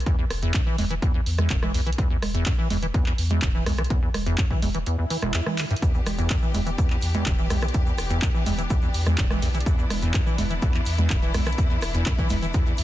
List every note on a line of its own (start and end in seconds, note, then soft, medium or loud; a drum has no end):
0.00 closed hi-hat medium
0.06 0.16 E2 medium
0.06 kick loud
0.06 closed hi-hat medium
0.18 0.25 E2 medium
0.30 0.50 E1 loud
0.30 cross-stick medium
0.30 open hi-hat loud
0.43 0.52 E2 loud
0.43 closed hi-hat medium
0.54 kick loud
0.54 clap loud
0.54 closed hi-hat medium
0.66 0.76 E3 medium
0.78 0.98 E1 medium
0.78 0.85 E2 medium
0.78 open hi-hat medium
0.78 low conga medium
0.90 0.94 E3 medium
0.90 closed hi-hat medium
1.02 1.12 E2 medium
1.02 kick loud
1.02 closed hi-hat medium
1.14 1.21 E2 medium
1.26 1.46 E2 medium
1.26 open hi-hat medium
1.38 1.48 E2 loud
1.38 cross-stick medium
1.38 closed hi-hat soft
1.38 low conga medium
1.50 1.70 E1 medium
1.50 1.57 F#2 loud
1.50 kick loud
1.50 clap loud
1.50 closed hi-hat medium
1.62 1.72 E3 medium
1.62 cross-stick medium
1.62 low conga medium
1.74 1.94 B1 medium
1.74 1.81 E2 medium
1.74 open hi-hat medium
1.86 1.90 E3 medium
1.86 closed hi-hat soft
1.93 closed hi-hat medium
1.98 2.08 E2 medium
1.98 kick loud
1.98 closed hi-hat medium
2.10 2.17 E2 medium
2.22 2.42 E1 loud
2.22 cross-stick medium
2.22 open hi-hat medium
2.22 low conga medium
2.34 2.44 E2 loud
2.34 closed hi-hat medium
2.46 2.53 F#2 loud
2.46 kick loud
2.46 clap loud
2.46 closed hi-hat medium
2.58 2.68 E3 medium
2.70 2.90 E1 medium
2.70 2.77 E2 medium
2.70 open hi-hat medium
2.70 low conga medium
2.82 2.86 E3 medium
2.82 closed hi-hat medium
2.94 3.04 E2 medium
2.94 kick loud
2.94 closed hi-hat medium
3.06 3.13 E2 medium
3.06 clap soft
3.18 3.38 E2 loud
3.18 open hi-hat loud
3.30 3.40 E2 loud
3.30 closed hi-hat medium
3.30 low conga medium
3.42 3.62 E1 medium
3.42 3.49 F#2 loud
3.42 kick loud
3.42 clap loud
3.42 closed hi-hat medium
3.54 3.64 E3 medium
3.66 3.86 B1 medium
3.66 3.73 E2 medium
3.66 cross-stick medium
3.66 open hi-hat medium
3.66 low conga medium
3.78 3.82 E3 medium
3.78 cross-stick medium
3.78 closed hi-hat soft
3.84 closed hi-hat medium
3.90 4.00 E2 medium
3.90 kick loud
3.90 closed hi-hat medium
4.02 4.09 E2 medium
4.14 4.34 E1 medium
4.14 cross-stick medium
4.14 open hi-hat loud
4.14 low conga medium
4.26 4.36 E2 loud
4.26 closed hi-hat medium
4.38 4.45 F#2 loud
4.38 kick loud
4.38 clap loud
4.38 closed hi-hat medium
4.50 4.60 E3 medium
4.50 kick medium
4.62 4.82 E1 medium
4.62 4.69 E2 medium
4.62 open hi-hat medium
4.62 low conga medium
4.74 4.78 E3 medium
4.74 closed hi-hat medium
4.86 4.96 E2 medium
4.86 closed hi-hat medium
4.86 swell medium
4.98 5.05 E2 medium
5.10 5.17 E3 medium
5.10 open hi-hat loud
5.22 5.32 E1 loud
5.22 cross-stick medium
5.22 closed hi-hat medium
5.22 low conga medium
5.34 5.41 E2 medium
5.34 clap loud
5.34 closed hi-hat medium
5.46 5.60 E3 medium
5.46 cross-stick medium
5.46 low conga medium
5.58 5.65 D3 medium
5.58 clap medium
5.58 open hi-hat medium
5.70 5.74 G2 loud
5.70 closed hi-hat medium
5.76 closed hi-hat medium
5.82 5.92 E2 medium
5.82 12.84 E3 medium
5.82 12.84 B3 medium
5.82 12.84 D4 medium
5.82 9.65 G4 medium
5.82 kick loud
5.82 closed hi-hat medium
5.82 shaker medium
5.94 6.01 E2 medium
5.94 shaker soft
6.06 6.26 E1 loud
6.06 cross-stick medium
6.06 open hi-hat loud
6.06 low conga medium
6.06 shaker medium
6.18 6.28 E2 loud
6.18 closed hi-hat medium
6.18 shaker soft
6.30 kick loud
6.30 clap loud
6.30 closed hi-hat medium
6.30 shaker medium
6.42 6.52 E3 medium
6.42 shaker soft
6.54 6.74 E1 medium
6.54 6.61 E2 medium
6.54 open hi-hat medium
6.54 low conga medium
6.54 shaker medium
6.66 6.70 E3 medium
6.66 closed hi-hat medium
6.66 shaker soft
6.78 6.88 E2 medium
6.78 kick loud
6.78 closed hi-hat medium
6.78 shaker medium
6.90 6.97 E2 medium
6.90 clap soft
6.90 shaker soft
7.02 7.22 E2 loud
7.02 open hi-hat loud
7.02 shaker medium
7.14 7.24 E2 loud
7.14 closed hi-hat medium
7.14 low conga medium
7.14 shaker soft
7.26 7.46 E1 medium
7.26 7.33 F#2 medium
7.26 kick loud
7.26 clap loud
7.26 closed hi-hat medium
7.26 shaker soft
7.38 7.48 E3 medium
7.38 shaker soft
7.50 7.70 B1 medium
7.50 7.57 E2 medium
7.50 cross-stick medium
7.50 open hi-hat medium
7.50 low conga medium
7.50 shaker medium
7.62 7.66 E3 medium
7.62 cross-stick medium
7.62 closed hi-hat soft
7.62 shaker soft
7.68 closed hi-hat medium
7.74 7.84 E2 medium
7.74 kick loud
7.74 closed hi-hat medium
7.74 shaker medium
7.86 7.93 E2 medium
7.86 shaker soft
7.98 8.18 E1 loud
7.98 cross-stick medium
7.98 open hi-hat loud
7.98 shaker medium
8.10 8.20 E2 loud
8.10 closed hi-hat medium
8.10 shaker soft
8.22 8.29 F#2 loud
8.22 kick loud
8.22 clap loud
8.22 closed hi-hat medium
8.22 shaker medium
8.34 8.44 E3 medium
8.34 shaker soft
8.46 8.66 E1 medium
8.46 8.53 E2 medium
8.46 open hi-hat loud
8.46 low conga medium
8.46 shaker loud
8.58 8.62 E3 medium
8.58 closed hi-hat medium
8.58 shaker soft
8.70 8.80 E2 medium
8.70 kick loud
8.70 closed hi-hat medium
8.70 shaker soft
8.82 8.89 E2 medium
8.82 shaker soft
8.94 9.14 E2 loud
8.94 open hi-hat loud
8.94 shaker medium
9.06 9.16 E2 loud
9.06 cross-stick medium
9.06 closed hi-hat medium
9.06 low conga medium
9.06 shaker soft
9.18 9.38 E1 medium
9.18 9.25 F#2 loud
9.18 kick loud
9.18 clap loud
9.18 closed hi-hat medium
9.18 shaker soft
9.30 9.40 E3 medium
9.30 cross-stick medium
9.30 low conga medium
9.30 shaker soft
9.42 9.62 B1 medium
9.42 9.49 E2 medium
9.42 open hi-hat medium
9.42 shaker loud
9.54 9.58 E3 medium
9.54 closed hi-hat medium
9.54 shaker soft
9.60 closed hi-hat medium
9.66 9.76 E2 medium
9.66 12.84 E4 medium
9.66 kick loud
9.66 closed hi-hat medium
9.66 shaker medium
9.78 9.85 E2 medium
9.78 shaker soft
9.90 10.10 E1 medium
9.90 cross-stick medium
9.90 open hi-hat loud
9.90 low conga medium
9.90 shaker medium
10.02 10.12 E2 loud
10.02 closed hi-hat medium
10.02 shaker soft
10.14 10.21 F#2 loud
10.14 kick loud
10.14 clap loud
10.14 closed hi-hat medium
10.14 shaker soft
10.26 10.36 E3 medium
10.26 shaker soft
10.38 10.58 E1 medium
10.38 10.45 E2 medium
10.38 open hi-hat loud
10.38 low conga loud
10.38 shaker loud
10.50 10.54 E3 medium
10.50 closed hi-hat medium
10.50 shaker soft
10.62 10.72 E2 medium
10.62 kick loud
10.62 closed hi-hat medium
10.62 shaker soft
10.74 10.81 E2 medium
10.74 clap soft
10.74 shaker soft
10.86 11.06 E2 medium
10.86 open hi-hat loud
10.86 shaker loud
10.98 11.08 E2 loud
10.98 closed hi-hat medium
10.98 low conga medium
10.98 shaker soft
11.10 11.30 E1 medium
11.10 11.17 F#2 loud
11.10 kick loud
11.10 clap loud
11.10 closed hi-hat medium
11.10 shaker medium
11.22 11.32 E3 medium
11.22 shaker soft
11.34 11.54 B1 loud
11.34 11.41 E2 medium
11.34 cross-stick medium
11.34 open hi-hat loud
11.34 low conga medium
11.34 shaker medium
11.46 11.50 E3 medium
11.46 cross-stick medium
11.46 closed hi-hat soft
11.46 shaker soft
11.52 closed hi-hat medium
11.58 11.68 E2 medium
11.58 kick loud
11.58 closed hi-hat medium
11.58 shaker medium
11.70 11.77 E2 medium
11.70 shaker soft
11.82 12.02 E1 loud
11.82 cross-stick medium
11.82 open hi-hat loud
11.82 shaker medium
11.94 12.04 E2 loud
11.94 closed hi-hat soft
11.94 shaker soft
12.06 12.13 F#2 loud
12.06 kick loud
12.06 clap loud
12.06 closed hi-hat medium
12.06 shaker soft
12.18 12.28 E3 medium
12.18 kick medium
12.18 shaker soft
12.30 12.50 E1 medium
12.30 12.37 E2 medium
12.30 open hi-hat medium
12.30 low conga loud
12.30 shaker medium
12.42 12.46 E3 medium
12.42 closed hi-hat soft
12.42 shaker soft
12.54 12.64 E2 medium
12.54 kick loud
12.54 closed hi-hat medium
12.54 shaker soft
12.66 12.73 E2 medium
12.66 shaker soft
12.78 12.84 E2 loud
12.78 open hi-hat loud
12.78 shaker medium